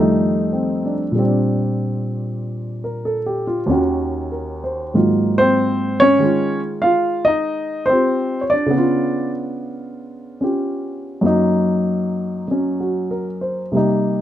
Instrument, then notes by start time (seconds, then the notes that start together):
grand piano
Already playing: F2 D#3 G3 A3 D#4
0.53 C4
0.85 D4
1.12 A#2 G3
1.19 C4
1.23 D4
2.84 A#4
3.05 A4
3.26 G4
3.47 F4
3.66 D#2 D#3 C#4
3.71 F#4
4.32 A#4
4.64 C5
4.94 G#2 D#3 F#3 A#3 D#4 F4
5.38 C4 C5
6.00 C#4 C#5
6.19 D#3 G#3
6.24 F4
6.82 F4 F5
7.25 D#4 D#5
7.86 C4 C5
7.91 F4 G4
8.41 C#5
8.50 D4 D5
8.66 C#3
8.71 B3 D4
8.78 F4
10.41 C#4 F4 G4
11.21 F#2 F#3 A#3
11.26 D#4
12.48 F#3 C#4
12.80 F#4
13.11 A#4
13.41 C5
13.72 C3 G3 A#3
13.77 D#4